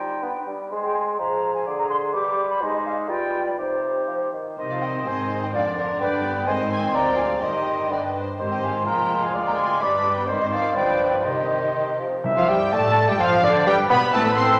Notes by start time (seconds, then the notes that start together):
Already playing: G3 D#4 C5 G5
0.23 B3 D4 B4
0.47 G3
0.71 G#3 G#4 C5
0.84 G5
0.95 G#5
1.18 F3 G#4 C5 A#5
1.54 G#5
1.66 D3 G#4 D5
1.79 A#5
1.90 C5 C6
2.13 G3 G4 B4 D6
2.50 B5
2.60 G#3 D#4 C5
2.74 D#5
2.86 F5
3.09 G3 F4 B4 G5
3.46 D5
3.58 C3 D#4 G4 C5
4.07 F3
4.33 D#3
4.58 C2 C3 D#3 C4 D#4 C5 D#5
4.69 F3 D5 F5
4.81 G3 D#5 G5
5.06 G#1 G#2 G#3 C4 D#4 C5 D#5 G#5
5.42 G3 D#5 G5
5.53 F1 F2 D3 F3 D4 A#4 D5 F5
5.76 D3 A#4 D5
6.00 G1 G2 G3 D4 B4 D5 G5
6.24 B3
6.47 G#1 G#2 D#3 G#3 C4 D#4 C5 D#5 G#5
6.70 C4 G#5 C6
6.93 D2 F3 A#3 F4 D5 G5 A#5
7.17 G#3 F5 G#5
7.41 G1 G2 D#3 G3 D#4 G4 C5 D#5 G5
7.90 G1 G2 D3 D4 B4 D5
8.15 C5
8.38 G#1 G#2 D#3 C4 G4 C5
8.50 G3 D#5 G5
8.63 G#3 F5 G#5
8.86 F1 F2 G#3 A#3 F4 C5 F5 G5 A#5
9.22 G#3 F5 G#5
9.34 D2 D5
9.46 A#3 G5 A#5
9.58 C4 G#5 C6
9.81 G1 G2 G3 D4 B4 D5 B5 D6
10.16 B3 G5 B5
10.27 G#1 G#2 D#3 C4 C5
10.40 D#3 C5 D#5
10.52 F3 D5 F5
10.74 G1 G2 F3 G3 D4 B4 D5 G5
11.12 D3 B4 D5
11.25 C2 C3 D#3 D#4 G4 C5 D#5
11.75 D#3
11.99 F3
12.24 C3 E5
12.36 F2 F3 F4 F5
12.48 G2 G3 G4 G5
12.72 A2 A3 A4 D5 A5
13.08 G2 G3 G4 G5
13.19 F2 F3 F4 C5 F5
13.43 D2 D3 D4 D5
13.66 G2 G3 G4 B4 G5
13.89 B2 B3 B4 B5
14.12 A1 E3 A3 C4 A4 A5 E6
14.24 A3 B3 C5 B5
14.36 C4 A4 C6
14.48 A3 C5